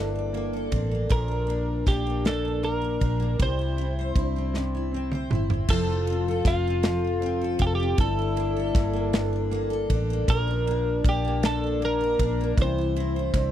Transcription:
Already playing: fingered electric bass G1, steel-string acoustic guitar G2 A#3 D4 A4, clean electric guitar G3 A#3 D4 A4, french horn section E4
0.15 steel-string acoustic guitar D4
0.33 clean electric guitar A#3, steel-string acoustic guitar A#3, ride
0.53 steel-string acoustic guitar A4
0.71 fingered electric bass A1, clean electric guitar C4, steel-string acoustic guitar D4, kick, ride
0.91 steel-string acoustic guitar A#3, clean electric guitar D4
1.09 fingered electric bass A#1, steel-string acoustic guitar A#2, clean electric guitar F3 A#4, french horn section D4, kick, ride
1.28 steel-string acoustic guitar D4
1.47 steel-string acoustic guitar A#3, clean electric guitar D4, ride
1.86 fingered electric bass A#1, clean electric guitar A#3 G4, steel-string acoustic guitar D4, kick, snare, ride
2.07 steel-string acoustic guitar A#3
2.25 steel-string acoustic guitar A#2, clean electric guitar D4 A4, snare, ride
2.45 steel-string acoustic guitar D4
2.63 steel-string acoustic guitar A#3, clean electric guitar A#3 A#4, ride
2.82 steel-string acoustic guitar A#4
3.00 fingered electric bass A#1, steel-string acoustic guitar D4, clean electric guitar D4, kick, ride
3.20 steel-string acoustic guitar A#3
3.39 fingered electric bass C2, steel-string acoustic guitar C3, clean electric guitar G3 C5, french horn section E4, kick, ride
3.59 steel-string acoustic guitar E4
3.77 steel-string acoustic guitar C4, clean electric guitar E4, ride
3.99 steel-string acoustic guitar C5
4.15 fingered electric bass C2, clean electric guitar C4, french horn section D4, steel-string acoustic guitar E4, kick, ride
4.36 steel-string acoustic guitar C4
4.54 steel-string acoustic guitar C3, clean electric guitar E4, snare
4.75 steel-string acoustic guitar E4
4.92 clean electric guitar C4, steel-string acoustic guitar C4
5.12 steel-string acoustic guitar C5, mid tom
5.30 fingered electric bass G1, french horn section C4, clean electric guitar E4, steel-string acoustic guitar E4, mid tom
5.50 steel-string acoustic guitar C4, floor tom
5.67 fingered electric bass F1, clean electric guitar F3 A4, steel-string acoustic guitar F3, french horn section F4, kick, crash
5.90 steel-string acoustic guitar F4
6.06 steel-string acoustic guitar C4, clean electric guitar F4, ride
6.28 steel-string acoustic guitar A4
6.45 fingered electric bass F1, clean electric guitar C4 F4, steel-string acoustic guitar F4, kick, snare, ride
6.67 steel-string acoustic guitar C4
6.83 steel-string acoustic guitar F3, clean electric guitar F4, snare, ride
7.04 steel-string acoustic guitar F4
7.20 clean electric guitar C4, steel-string acoustic guitar C4, ride
7.41 steel-string acoustic guitar A4
7.59 fingered electric bass F1, clean electric guitar F4 G4, steel-string acoustic guitar F4, kick, ride
7.67 clean electric guitar A4
7.75 clean electric guitar G4
7.80 steel-string acoustic guitar C4
7.97 fingered electric bass G1, steel-string acoustic guitar G2, clean electric guitar G3 A4, french horn section E4, kick, ride
8.19 steel-string acoustic guitar D4
8.36 steel-string acoustic guitar A#3, clean electric guitar D4, ride
8.56 steel-string acoustic guitar A4
8.75 fingered electric bass G1, clean electric guitar A#3, steel-string acoustic guitar D4, kick, snare, ride
8.93 steel-string acoustic guitar A#3
9.13 steel-string acoustic guitar G2, clean electric guitar D4, snare, ride
9.33 steel-string acoustic guitar D4
9.50 clean electric guitar A#3, steel-string acoustic guitar A#3, ride
9.70 steel-string acoustic guitar A4
9.90 fingered electric bass A1, clean electric guitar D4, steel-string acoustic guitar D4, kick, ride
10.10 steel-string acoustic guitar A#3
10.28 fingered electric bass A#1, steel-string acoustic guitar A#2, clean electric guitar F3 A#4, french horn section D4, kick, ride
10.47 steel-string acoustic guitar D4
10.66 steel-string acoustic guitar A#3, clean electric guitar D4, ride
11.04 fingered electric bass A#1, clean electric guitar A#3, steel-string acoustic guitar D4, kick, ride
11.09 clean electric guitar G4
11.25 steel-string acoustic guitar A#3
11.43 steel-string acoustic guitar A#2, clean electric guitar D4 A4, snare, ride
11.64 steel-string acoustic guitar D4
11.81 clean electric guitar A#3, steel-string acoustic guitar A#3, ride
11.85 clean electric guitar A#4
12.01 steel-string acoustic guitar A#4
12.19 fingered electric bass A#1, clean electric guitar D4, steel-string acoustic guitar D4, kick, ride
12.41 steel-string acoustic guitar A#3
12.57 fingered electric bass C2, steel-string acoustic guitar C3, clean electric guitar E3, french horn section E4, kick, ride
12.62 clean electric guitar C5
12.78 steel-string acoustic guitar E4
12.96 steel-string acoustic guitar C4, clean electric guitar E4, ride
13.16 steel-string acoustic guitar C5
13.34 fingered electric bass C2, clean electric guitar C4, french horn section D4, steel-string acoustic guitar E4, kick, snare, ride

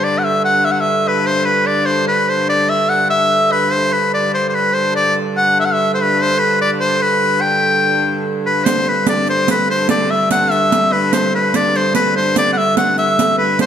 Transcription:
Already playing: hurdy-gurdy G2 D3
0.04 shawm D5
0.18 shawm F#5
0.24 shawm E5
0.45 shawm F#5
0.65 shawm E5
0.71 shawm F#5
0.80 shawm E5
1.08 shawm B4
1.26 shawm C5
1.45 shawm B4
1.66 shawm D5
1.86 shawm C5
2.08 shawm B4
2.29 shawm C5
2.49 shawm D5
2.69 shawm E5
2.89 shawm F#5
3.10 shawm E5
3.52 shawm B4
3.71 hurdy-gurdy G2 D3, shawm C5
3.92 shawm B4
4.14 shawm D5
4.34 shawm C5
4.49 shawm C5
4.54 shawm B4
4.73 shawm C5
4.96 shawm D5
5.37 shawm F#5
5.60 shawm E5
5.65 shawm F#5
5.73 shawm E5
5.94 shawm C5
6.02 shawm B4
6.22 shawm C5
6.39 shawm B4
6.62 shawm D5
6.80 shawm C5
7.01 shawm B4
7.41 shawm G5
8.46 shawm B4
8.64 hurdy-gurdy G2 D3, shawm C5, riq
8.88 shawm B4
9.07 shawm D5, riq
9.27 shawm C5, riq
9.48 shawm B4, riq
9.70 shawm C5
9.89 shawm D5, riq
10.10 shawm E5
10.31 shawm F#5, riq
10.51 shawm E5, riq
10.72 riq
10.92 shawm B4
11.13 shawm C5, riq
11.35 shawm B4
11.54 shawm D5, riq
11.75 shawm C5, riq
11.95 shawm B4, riq
12.16 shawm C5
12.36 shawm D5, riq
12.53 shawm F#5
12.58 shawm E5
12.77 shawm F#5, riq
12.98 shawm E5, riq
13.19 riq
13.38 shawm B4
13.59 hurdy-gurdy G2 D3, shawm C5, riq

